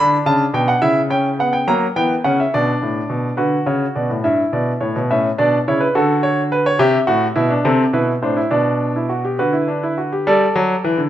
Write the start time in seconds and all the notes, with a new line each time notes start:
0.00 D3 D4 B5
0.26 C#3 A5
0.54 B2 G5
0.68 F#5
0.82 C#3 E4 E5
1.10 C#4 G5
1.39 B3 F#5
1.53 G5
1.67 F#3 A#3 A#5
1.96 E3 B3 G5
2.24 C#3 C#4 F#5
2.40 E5
2.54 B2 D4 D5
2.82 A2
3.10 B2
3.37 D3 F#4 B4
3.66 C#3 C#5
3.96 B2 D5
4.10 A2
4.24 G2 E4 E5
4.53 B2 D5
4.81 A2 C#5
4.96 B2
5.10 A2 C#4 E5
5.38 B2 D4 D5
5.68 C#3 E4 C#5
5.80 B4
5.95 D3 F#4 A4
6.23 C#5
6.52 B4
6.66 C#5
6.79 C3 G4 E5
7.07 A2 F#4
7.36 B2 E4
7.50 D4
7.65 C3 C4 A4
7.93 B2 E4 B4
8.22 A2 D4 C5
8.37 E4
8.51 B2 D4 D5
8.96 E4
9.09 F#4
9.25 G4
9.39 D3 F#4 B4
9.53 E4
9.68 D4
9.83 E4
9.98 F#4
10.12 G4
10.27 G3 A4 D5
10.55 F#3
10.84 E3
10.98 D3